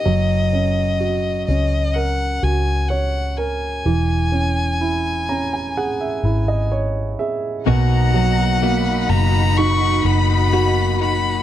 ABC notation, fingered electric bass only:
X:1
M:4/4
L:1/8
Q:1/4=63
K:B
V:1 name="Fingered electric bass" clef=bass
F,,,3 C,,2 C,,3 | E,,,4- E,,, G,,,2 z | B,,,3 F,,,2 F,,,3 |]